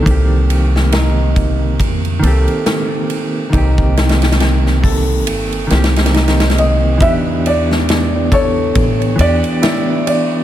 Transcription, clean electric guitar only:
0.03 D#3 A#3
0.08 C4 G4
2.19 D#3 A#3
2.25 C4 G4
3.50 D#3 A#3
3.55 C4 G4
5.67 D#3 A#3
5.72 C4 G4
6.98 E3 B3
7.03 D4 G4
9.16 E3 B3
9.21 D4 G4

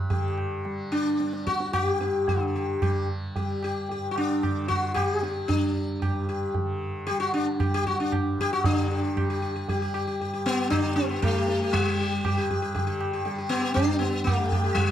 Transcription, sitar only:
0.10 G4
0.92 D4
1.47 F#4
1.73 F#4
1.84 G4
2.01 G4
2.29 D4
2.56 G4
2.82 G4
3.36 G4
3.64 G4
3.91 G4
4.11 F#4
4.18 D4
4.68 F#4
4.94 G4
5.23 G4
5.48 D4
6.02 G4
6.29 G4
7.07 G4
7.20 F#4
7.34 D4
7.61 G4
7.74 G4
7.87 F#4
8.00 D4
8.41 G4
8.53 F#4
8.65 D4 G4
8.79 G4
8.92 G4
9.04 G4
9.30 G4
9.42 G4
9.56 G4
9.69 G4
9.82 G4
9.94 G4
10.07 G4
10.21 G4
10.33 G4
10.46 B3
10.70 D4
10.85 G4
10.96 B3
11.11 G4
11.22 A3
11.38 G4
11.62 G4
11.73 G3
11.88 G4
12.01 G4
12.25 G4
12.37 G4
12.50 G4
12.62 G4
12.75 G4
12.87 G4
13.13 G4
13.25 G4
13.38 G4
13.49 B3
13.62 G4
13.74 D4
13.87 G4
13.99 B3
14.24 A3
14.40 G4
14.52 G4
14.64 G4
14.74 G3

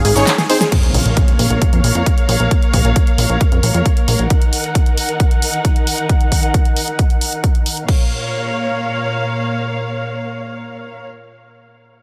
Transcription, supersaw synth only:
0.05 G#4
0.16 C#4 D#4 G#4 C#5
0.27 G#4
0.39 G#4
0.50 C4 D#4 G#4 C5
0.61 G#4

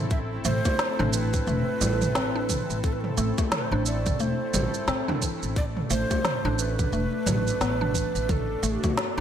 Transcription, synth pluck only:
0.45 A3
0.66 A3
0.99 D4
1.47 A3
1.81 G3
2.15 C4
2.36 D4
2.50 E3
3.17 A3
3.38 A3
3.72 D4
4.20 A3
4.54 G3
4.88 C4
5.08 D4
5.22 E3
5.90 A3
6.11 A3
6.45 D4
6.93 A3
7.27 F#3
7.61 B3
7.81 D4
7.95 E3
8.63 A3
8.84 A3

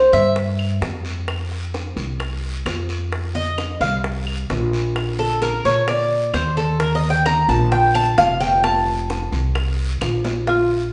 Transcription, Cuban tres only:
0.13 E5
3.35 D#5
3.81 F5
5.19 A4
5.42 A#4
5.65 C#5
5.88 D5
6.34 C5
6.57 A4
6.80 A#4
6.95 D#5
7.10 G5
7.26 A#5
7.49 A5
7.72 G5
7.95 A5
8.18 F5
8.40 G5
8.64 A5
10.47 F4

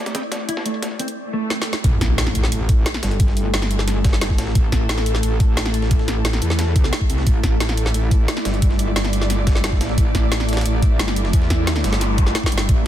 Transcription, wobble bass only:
1.84 A1
2.01 A1
2.52 A1
3.03 G1
4.38 A1
4.55 A1
4.72 A1
5.23 A1
5.57 A1
6.42 E2
7.10 C2
7.27 A1
7.43 A1
7.94 A1
8.45 G1
9.81 A1
9.98 A1
10.15 A1
10.66 A1
10.99 G1
11.33 E2
11.84 G1
12.52 G1
12.69 A1

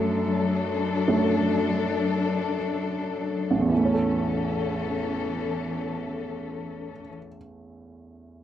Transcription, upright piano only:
Already playing: F#2 F#3 A3 A4
1.08 F#2 F#3 A3
3.51 A1
3.59 E2
3.68 E3
3.77 A3
3.85 C#4
3.94 A4

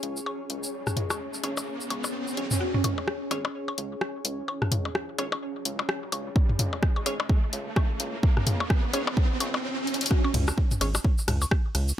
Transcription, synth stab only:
1.44 C#4 G#4 C#5
2.37 C#4 G#4 C#5
3.31 C#4 G#4 C#5
5.18 C#4 G#4 C#5
7.06 C#4 G#4 C#5
8.94 C#4 G#4 C#5
10.81 C#4 G#4 C#5

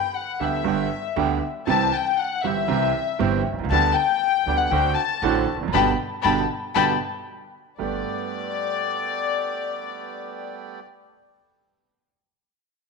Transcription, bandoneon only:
0.40 B3 D4 G4
0.66 B3 D4 G4
1.17 B3 D4 G4
1.68 C4 E4 G4
2.45 C4 E4 G4
2.70 C4 E4 G4
3.20 C4 E4 G4
3.71 B3 D4 G4
4.47 B3 D4 G4
4.72 C4 D4 F#4
5.23 C4 D4 F#4
5.74 B3 D4 G4
6.26 B3 D4 G4
6.76 B3 D4 G4
7.80 A3 B3 G4

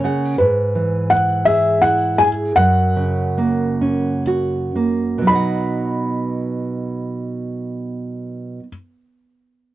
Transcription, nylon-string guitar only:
Already playing: A#3 C#4
0.04 C#3 F#5
0.40 G#2
0.75 E3
1.11 E4
1.46 G#4
1.82 E4
2.18 G#4
2.56 F#2
2.96 C#3
3.38 A#3
3.81 C#4
4.27 F#4
4.75 A#3
5.18 B2 F#3
5.25 B3 D#4
5.32 C#5 F#5

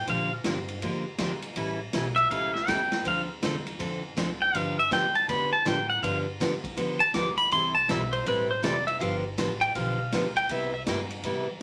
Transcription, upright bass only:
0.07 A#2
0.44 G2
0.82 F2
1.19 D2
1.56 A1
1.93 B1
2.30 C#2
2.68 E2
3.05 D2
3.42 E2
3.80 F2
4.17 D2
4.54 G2
4.91 E2
5.28 F2
5.65 A2
6.03 G2
6.40 F2
6.77 E2
7.14 D2
7.51 C2
7.88 B1
8.26 A1
8.64 F1
9.01 G1
9.38 A1
9.75 B1
10.12 D2
10.49 C2
10.86 G2
11.23 E2

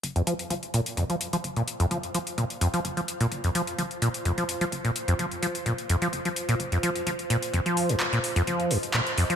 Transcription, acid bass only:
0.16 F2
0.27 F3
0.50 F3
0.74 A#2
0.97 F2
1.10 F3
1.33 F3
1.57 A#2
1.80 F2
1.91 F3
2.14 F3
2.38 A#2
2.61 F2
2.74 F3
2.97 F3
3.21 A#2
3.44 F2
3.55 F3
3.78 F3
4.02 A#2
4.25 F2
4.38 F3
4.61 F3
4.85 A#2
5.08 F2
5.19 F3
5.43 F3
5.66 A#2
5.89 F2
6.02 F3
6.25 F3
6.49 A#2
6.72 F2
6.83 F3
7.07 F3
7.30 A#2
7.53 F2
7.66 F3
7.89 F2
8.13 A#2
8.36 F2
8.47 F3
8.71 F2
8.94 A#2
9.18 F2
9.30 F3

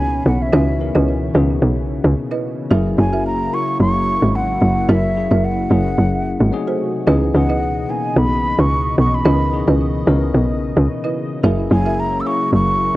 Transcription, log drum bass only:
Already playing: C#2
0.26 B1
0.53 C#2
0.95 C#2
1.35 C#2
1.62 B1
2.04 C#2
2.71 F#1
2.98 F#1
3.80 F#1
4.22 G#1
4.62 F#1
4.89 F#1
5.31 F#1
5.71 F#1
5.98 F#1
6.40 G#1
7.07 C#2
7.34 C#2
8.16 B1
8.58 C#2
8.98 B1
9.25 C#2
9.68 C#2
10.07 C#2
10.34 B1
10.77 C#2
11.44 F#1
11.71 F#1
12.53 F#1

